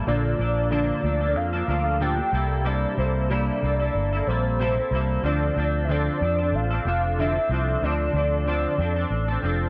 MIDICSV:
0, 0, Header, 1, 4, 480
1, 0, Start_track
1, 0, Key_signature, -1, "minor"
1, 0, Tempo, 645231
1, 54, Time_signature, 4, 2, 24, 8
1, 7209, End_track
2, 0, Start_track
2, 0, Title_t, "Soft synth lead"
2, 0, Program_c, 0, 80
2, 55, Note_on_c, 0, 74, 108
2, 505, Note_off_c, 0, 74, 0
2, 529, Note_on_c, 0, 74, 111
2, 1016, Note_on_c, 0, 77, 127
2, 1027, Note_off_c, 0, 74, 0
2, 1252, Note_off_c, 0, 77, 0
2, 1257, Note_on_c, 0, 77, 115
2, 1479, Note_off_c, 0, 77, 0
2, 1502, Note_on_c, 0, 79, 121
2, 1984, Note_on_c, 0, 74, 109
2, 1995, Note_off_c, 0, 79, 0
2, 2219, Note_on_c, 0, 72, 95
2, 2230, Note_off_c, 0, 74, 0
2, 2462, Note_on_c, 0, 74, 110
2, 2473, Note_off_c, 0, 72, 0
2, 3180, Note_on_c, 0, 72, 103
2, 3191, Note_off_c, 0, 74, 0
2, 3897, Note_off_c, 0, 72, 0
2, 3910, Note_on_c, 0, 74, 109
2, 4305, Note_off_c, 0, 74, 0
2, 4351, Note_on_c, 0, 76, 75
2, 4396, Note_on_c, 0, 74, 101
2, 4407, Note_off_c, 0, 76, 0
2, 4874, Note_on_c, 0, 77, 122
2, 4885, Note_off_c, 0, 74, 0
2, 5104, Note_off_c, 0, 77, 0
2, 5111, Note_on_c, 0, 77, 103
2, 5353, Note_on_c, 0, 76, 111
2, 5364, Note_off_c, 0, 77, 0
2, 5832, Note_on_c, 0, 74, 107
2, 5843, Note_off_c, 0, 76, 0
2, 7209, Note_off_c, 0, 74, 0
2, 7209, End_track
3, 0, Start_track
3, 0, Title_t, "Clean electric guitar"
3, 0, Program_c, 1, 27
3, 48, Note_on_c, 1, 46, 76
3, 53, Note_on_c, 1, 50, 81
3, 54, Note_on_c, 1, 53, 74
3, 60, Note_on_c, 1, 58, 85
3, 63, Note_on_c, 1, 62, 86
3, 64, Note_on_c, 1, 69, 90
3, 268, Note_off_c, 1, 53, 0
3, 277, Note_on_c, 1, 53, 55
3, 279, Note_off_c, 1, 58, 0
3, 288, Note_on_c, 1, 58, 63
3, 291, Note_off_c, 1, 46, 0
3, 292, Note_off_c, 1, 62, 0
3, 294, Note_off_c, 1, 50, 0
3, 299, Note_off_c, 1, 69, 0
3, 301, Note_on_c, 1, 62, 68
3, 307, Note_on_c, 1, 69, 66
3, 517, Note_off_c, 1, 53, 0
3, 522, Note_on_c, 1, 46, 76
3, 525, Note_on_c, 1, 50, 83
3, 526, Note_off_c, 1, 58, 0
3, 526, Note_off_c, 1, 62, 0
3, 526, Note_on_c, 1, 53, 77
3, 530, Note_off_c, 1, 69, 0
3, 535, Note_on_c, 1, 58, 92
3, 535, Note_on_c, 1, 62, 82
3, 539, Note_on_c, 1, 69, 93
3, 752, Note_off_c, 1, 53, 0
3, 761, Note_on_c, 1, 53, 60
3, 766, Note_off_c, 1, 58, 0
3, 768, Note_off_c, 1, 46, 0
3, 769, Note_off_c, 1, 50, 0
3, 773, Note_off_c, 1, 62, 0
3, 775, Note_on_c, 1, 58, 56
3, 777, Note_off_c, 1, 69, 0
3, 782, Note_on_c, 1, 62, 57
3, 789, Note_on_c, 1, 69, 61
3, 889, Note_off_c, 1, 69, 0
3, 898, Note_on_c, 1, 69, 59
3, 899, Note_off_c, 1, 62, 0
3, 900, Note_off_c, 1, 53, 0
3, 907, Note_off_c, 1, 58, 0
3, 908, Note_on_c, 1, 62, 56
3, 918, Note_on_c, 1, 58, 48
3, 928, Note_on_c, 1, 53, 42
3, 1128, Note_off_c, 1, 69, 0
3, 1137, Note_on_c, 1, 69, 60
3, 1138, Note_off_c, 1, 62, 0
3, 1147, Note_off_c, 1, 58, 0
3, 1147, Note_on_c, 1, 62, 50
3, 1156, Note_on_c, 1, 58, 51
3, 1157, Note_off_c, 1, 53, 0
3, 1168, Note_on_c, 1, 53, 45
3, 1237, Note_off_c, 1, 53, 0
3, 1245, Note_on_c, 1, 53, 60
3, 1247, Note_off_c, 1, 58, 0
3, 1250, Note_off_c, 1, 69, 0
3, 1255, Note_off_c, 1, 62, 0
3, 1256, Note_on_c, 1, 58, 66
3, 1264, Note_on_c, 1, 62, 69
3, 1270, Note_on_c, 1, 69, 70
3, 1483, Note_off_c, 1, 53, 0
3, 1486, Note_on_c, 1, 46, 91
3, 1488, Note_off_c, 1, 58, 0
3, 1491, Note_off_c, 1, 62, 0
3, 1492, Note_on_c, 1, 50, 92
3, 1492, Note_on_c, 1, 53, 99
3, 1496, Note_off_c, 1, 69, 0
3, 1497, Note_on_c, 1, 58, 95
3, 1500, Note_on_c, 1, 62, 97
3, 1505, Note_on_c, 1, 69, 108
3, 1607, Note_off_c, 1, 69, 0
3, 1616, Note_on_c, 1, 69, 56
3, 1620, Note_off_c, 1, 62, 0
3, 1622, Note_off_c, 1, 46, 0
3, 1625, Note_off_c, 1, 50, 0
3, 1625, Note_off_c, 1, 53, 0
3, 1628, Note_off_c, 1, 58, 0
3, 1629, Note_on_c, 1, 62, 55
3, 1637, Note_on_c, 1, 58, 49
3, 1644, Note_on_c, 1, 53, 46
3, 1716, Note_off_c, 1, 53, 0
3, 1719, Note_on_c, 1, 55, 64
3, 1723, Note_off_c, 1, 58, 0
3, 1729, Note_off_c, 1, 69, 0
3, 1732, Note_on_c, 1, 58, 68
3, 1735, Note_off_c, 1, 62, 0
3, 1739, Note_on_c, 1, 64, 65
3, 1747, Note_on_c, 1, 69, 80
3, 1960, Note_off_c, 1, 55, 0
3, 1962, Note_on_c, 1, 48, 76
3, 1963, Note_off_c, 1, 58, 0
3, 1966, Note_off_c, 1, 64, 0
3, 1969, Note_on_c, 1, 55, 92
3, 1971, Note_off_c, 1, 69, 0
3, 1972, Note_on_c, 1, 58, 79
3, 1975, Note_on_c, 1, 64, 81
3, 1979, Note_on_c, 1, 69, 93
3, 2196, Note_off_c, 1, 55, 0
3, 2205, Note_on_c, 1, 55, 64
3, 2207, Note_off_c, 1, 58, 0
3, 2208, Note_off_c, 1, 48, 0
3, 2215, Note_off_c, 1, 64, 0
3, 2216, Note_on_c, 1, 58, 59
3, 2217, Note_off_c, 1, 69, 0
3, 2226, Note_on_c, 1, 64, 67
3, 2232, Note_on_c, 1, 69, 63
3, 2448, Note_off_c, 1, 55, 0
3, 2448, Note_on_c, 1, 48, 83
3, 2452, Note_off_c, 1, 58, 0
3, 2456, Note_off_c, 1, 64, 0
3, 2457, Note_on_c, 1, 55, 92
3, 2461, Note_off_c, 1, 69, 0
3, 2461, Note_on_c, 1, 58, 96
3, 2464, Note_on_c, 1, 64, 87
3, 2470, Note_on_c, 1, 69, 92
3, 2680, Note_off_c, 1, 55, 0
3, 2689, Note_on_c, 1, 55, 55
3, 2690, Note_off_c, 1, 58, 0
3, 2691, Note_off_c, 1, 48, 0
3, 2699, Note_off_c, 1, 64, 0
3, 2699, Note_on_c, 1, 58, 62
3, 2702, Note_off_c, 1, 69, 0
3, 2707, Note_on_c, 1, 64, 65
3, 2715, Note_on_c, 1, 69, 57
3, 2815, Note_off_c, 1, 69, 0
3, 2823, Note_off_c, 1, 55, 0
3, 2824, Note_on_c, 1, 69, 56
3, 2828, Note_off_c, 1, 58, 0
3, 2831, Note_off_c, 1, 64, 0
3, 2840, Note_on_c, 1, 64, 55
3, 2852, Note_on_c, 1, 58, 46
3, 3062, Note_off_c, 1, 69, 0
3, 3070, Note_on_c, 1, 69, 58
3, 3073, Note_off_c, 1, 64, 0
3, 3079, Note_off_c, 1, 58, 0
3, 3085, Note_on_c, 1, 64, 54
3, 3099, Note_on_c, 1, 58, 47
3, 3175, Note_on_c, 1, 55, 59
3, 3176, Note_off_c, 1, 69, 0
3, 3180, Note_off_c, 1, 58, 0
3, 3184, Note_off_c, 1, 64, 0
3, 3189, Note_on_c, 1, 58, 66
3, 3197, Note_on_c, 1, 64, 63
3, 3203, Note_on_c, 1, 69, 66
3, 3410, Note_off_c, 1, 55, 0
3, 3414, Note_on_c, 1, 48, 103
3, 3416, Note_off_c, 1, 58, 0
3, 3419, Note_on_c, 1, 55, 88
3, 3420, Note_off_c, 1, 64, 0
3, 3425, Note_on_c, 1, 58, 97
3, 3426, Note_off_c, 1, 69, 0
3, 3429, Note_on_c, 1, 64, 109
3, 3435, Note_on_c, 1, 69, 100
3, 3542, Note_off_c, 1, 69, 0
3, 3546, Note_off_c, 1, 48, 0
3, 3549, Note_off_c, 1, 55, 0
3, 3551, Note_on_c, 1, 69, 60
3, 3552, Note_off_c, 1, 58, 0
3, 3554, Note_off_c, 1, 64, 0
3, 3567, Note_on_c, 1, 64, 55
3, 3575, Note_on_c, 1, 58, 50
3, 3655, Note_on_c, 1, 55, 69
3, 3656, Note_off_c, 1, 69, 0
3, 3657, Note_off_c, 1, 58, 0
3, 3665, Note_off_c, 1, 64, 0
3, 3666, Note_on_c, 1, 58, 66
3, 3674, Note_on_c, 1, 64, 72
3, 3682, Note_on_c, 1, 69, 70
3, 3893, Note_on_c, 1, 50, 77
3, 3895, Note_off_c, 1, 55, 0
3, 3898, Note_on_c, 1, 53, 91
3, 3899, Note_off_c, 1, 58, 0
3, 3902, Note_on_c, 1, 60, 83
3, 3903, Note_off_c, 1, 69, 0
3, 3904, Note_off_c, 1, 64, 0
3, 3909, Note_on_c, 1, 62, 80
3, 3912, Note_on_c, 1, 69, 93
3, 4126, Note_off_c, 1, 53, 0
3, 4134, Note_off_c, 1, 50, 0
3, 4134, Note_off_c, 1, 60, 0
3, 4135, Note_on_c, 1, 53, 58
3, 4141, Note_off_c, 1, 62, 0
3, 4143, Note_off_c, 1, 69, 0
3, 4143, Note_on_c, 1, 60, 63
3, 4150, Note_on_c, 1, 62, 58
3, 4162, Note_on_c, 1, 69, 69
3, 4374, Note_off_c, 1, 53, 0
3, 4376, Note_off_c, 1, 60, 0
3, 4379, Note_on_c, 1, 50, 80
3, 4382, Note_off_c, 1, 62, 0
3, 4385, Note_on_c, 1, 53, 87
3, 4385, Note_on_c, 1, 60, 88
3, 4388, Note_off_c, 1, 69, 0
3, 4390, Note_on_c, 1, 62, 90
3, 4399, Note_on_c, 1, 69, 98
3, 4608, Note_off_c, 1, 53, 0
3, 4616, Note_off_c, 1, 50, 0
3, 4617, Note_off_c, 1, 60, 0
3, 4617, Note_on_c, 1, 53, 52
3, 4622, Note_off_c, 1, 62, 0
3, 4626, Note_off_c, 1, 69, 0
3, 4626, Note_on_c, 1, 60, 59
3, 4632, Note_on_c, 1, 62, 59
3, 4644, Note_on_c, 1, 69, 69
3, 4742, Note_off_c, 1, 69, 0
3, 4747, Note_off_c, 1, 53, 0
3, 4751, Note_on_c, 1, 69, 60
3, 4752, Note_off_c, 1, 60, 0
3, 4755, Note_off_c, 1, 62, 0
3, 4770, Note_on_c, 1, 62, 51
3, 4780, Note_on_c, 1, 60, 45
3, 4979, Note_off_c, 1, 69, 0
3, 4988, Note_on_c, 1, 69, 63
3, 4998, Note_off_c, 1, 62, 0
3, 5003, Note_off_c, 1, 60, 0
3, 5006, Note_on_c, 1, 62, 53
3, 5014, Note_on_c, 1, 60, 49
3, 5095, Note_off_c, 1, 69, 0
3, 5098, Note_on_c, 1, 53, 62
3, 5099, Note_off_c, 1, 60, 0
3, 5104, Note_off_c, 1, 62, 0
3, 5108, Note_on_c, 1, 60, 64
3, 5117, Note_on_c, 1, 62, 76
3, 5122, Note_on_c, 1, 69, 68
3, 5336, Note_off_c, 1, 53, 0
3, 5341, Note_off_c, 1, 60, 0
3, 5343, Note_on_c, 1, 50, 85
3, 5346, Note_off_c, 1, 62, 0
3, 5348, Note_off_c, 1, 69, 0
3, 5351, Note_on_c, 1, 53, 94
3, 5357, Note_on_c, 1, 60, 100
3, 5361, Note_on_c, 1, 62, 102
3, 5367, Note_on_c, 1, 69, 103
3, 5464, Note_off_c, 1, 69, 0
3, 5470, Note_off_c, 1, 50, 0
3, 5473, Note_on_c, 1, 69, 62
3, 5474, Note_off_c, 1, 53, 0
3, 5477, Note_off_c, 1, 60, 0
3, 5479, Note_off_c, 1, 62, 0
3, 5490, Note_on_c, 1, 62, 56
3, 5498, Note_on_c, 1, 60, 52
3, 5577, Note_off_c, 1, 69, 0
3, 5579, Note_off_c, 1, 60, 0
3, 5579, Note_on_c, 1, 53, 64
3, 5586, Note_off_c, 1, 62, 0
3, 5587, Note_on_c, 1, 60, 69
3, 5599, Note_on_c, 1, 62, 70
3, 5610, Note_on_c, 1, 69, 70
3, 5816, Note_off_c, 1, 53, 0
3, 5820, Note_off_c, 1, 60, 0
3, 5821, Note_on_c, 1, 50, 77
3, 5826, Note_off_c, 1, 62, 0
3, 5829, Note_on_c, 1, 53, 78
3, 5832, Note_off_c, 1, 69, 0
3, 5833, Note_on_c, 1, 60, 79
3, 5839, Note_on_c, 1, 62, 90
3, 5843, Note_on_c, 1, 69, 93
3, 6047, Note_off_c, 1, 53, 0
3, 6056, Note_off_c, 1, 60, 0
3, 6056, Note_on_c, 1, 53, 54
3, 6057, Note_off_c, 1, 50, 0
3, 6064, Note_off_c, 1, 62, 0
3, 6065, Note_on_c, 1, 60, 60
3, 6068, Note_off_c, 1, 69, 0
3, 6073, Note_on_c, 1, 62, 69
3, 6083, Note_on_c, 1, 69, 66
3, 6293, Note_on_c, 1, 50, 87
3, 6295, Note_off_c, 1, 53, 0
3, 6296, Note_off_c, 1, 60, 0
3, 6301, Note_off_c, 1, 62, 0
3, 6303, Note_on_c, 1, 53, 86
3, 6305, Note_on_c, 1, 60, 86
3, 6308, Note_off_c, 1, 69, 0
3, 6310, Note_on_c, 1, 62, 89
3, 6318, Note_on_c, 1, 69, 88
3, 6522, Note_off_c, 1, 53, 0
3, 6531, Note_on_c, 1, 53, 55
3, 6533, Note_off_c, 1, 50, 0
3, 6533, Note_off_c, 1, 60, 0
3, 6540, Note_off_c, 1, 62, 0
3, 6542, Note_on_c, 1, 60, 58
3, 6545, Note_off_c, 1, 69, 0
3, 6549, Note_on_c, 1, 62, 66
3, 6559, Note_on_c, 1, 69, 65
3, 6658, Note_off_c, 1, 69, 0
3, 6664, Note_off_c, 1, 53, 0
3, 6667, Note_on_c, 1, 69, 60
3, 6670, Note_off_c, 1, 60, 0
3, 6673, Note_off_c, 1, 62, 0
3, 6682, Note_on_c, 1, 62, 59
3, 6696, Note_on_c, 1, 60, 50
3, 6896, Note_off_c, 1, 69, 0
3, 6905, Note_on_c, 1, 69, 64
3, 6912, Note_off_c, 1, 62, 0
3, 6921, Note_off_c, 1, 60, 0
3, 6921, Note_on_c, 1, 62, 53
3, 6932, Note_on_c, 1, 60, 49
3, 7006, Note_on_c, 1, 53, 68
3, 7008, Note_off_c, 1, 60, 0
3, 7013, Note_off_c, 1, 69, 0
3, 7017, Note_off_c, 1, 62, 0
3, 7017, Note_on_c, 1, 60, 73
3, 7026, Note_on_c, 1, 62, 70
3, 7034, Note_on_c, 1, 69, 75
3, 7209, Note_off_c, 1, 53, 0
3, 7209, Note_off_c, 1, 60, 0
3, 7209, Note_off_c, 1, 62, 0
3, 7209, Note_off_c, 1, 69, 0
3, 7209, End_track
4, 0, Start_track
4, 0, Title_t, "Fingered electric bass"
4, 0, Program_c, 2, 33
4, 53, Note_on_c, 2, 34, 97
4, 246, Note_off_c, 2, 34, 0
4, 292, Note_on_c, 2, 34, 97
4, 677, Note_off_c, 2, 34, 0
4, 769, Note_on_c, 2, 38, 88
4, 1009, Note_off_c, 2, 38, 0
4, 1009, Note_on_c, 2, 41, 103
4, 1203, Note_off_c, 2, 41, 0
4, 1251, Note_on_c, 2, 38, 89
4, 1636, Note_off_c, 2, 38, 0
4, 1731, Note_on_c, 2, 36, 98
4, 2116, Note_off_c, 2, 36, 0
4, 2214, Note_on_c, 2, 36, 93
4, 2598, Note_off_c, 2, 36, 0
4, 2698, Note_on_c, 2, 36, 77
4, 2889, Note_off_c, 2, 36, 0
4, 2937, Note_on_c, 2, 31, 98
4, 3128, Note_off_c, 2, 31, 0
4, 3178, Note_on_c, 2, 34, 93
4, 3560, Note_off_c, 2, 34, 0
4, 3652, Note_on_c, 2, 36, 88
4, 3845, Note_off_c, 2, 36, 0
4, 3894, Note_on_c, 2, 38, 107
4, 4086, Note_off_c, 2, 38, 0
4, 4139, Note_on_c, 2, 38, 102
4, 4521, Note_off_c, 2, 38, 0
4, 4621, Note_on_c, 2, 41, 92
4, 4852, Note_on_c, 2, 33, 100
4, 4864, Note_off_c, 2, 41, 0
4, 5045, Note_off_c, 2, 33, 0
4, 5096, Note_on_c, 2, 29, 93
4, 5479, Note_off_c, 2, 29, 0
4, 5575, Note_on_c, 2, 36, 92
4, 5766, Note_off_c, 2, 36, 0
4, 5819, Note_on_c, 2, 38, 87
4, 6009, Note_off_c, 2, 38, 0
4, 6051, Note_on_c, 2, 38, 98
4, 6436, Note_off_c, 2, 38, 0
4, 6534, Note_on_c, 2, 41, 95
4, 6726, Note_off_c, 2, 41, 0
4, 6773, Note_on_c, 2, 33, 108
4, 6965, Note_off_c, 2, 33, 0
4, 7017, Note_on_c, 2, 29, 96
4, 7209, Note_off_c, 2, 29, 0
4, 7209, End_track
0, 0, End_of_file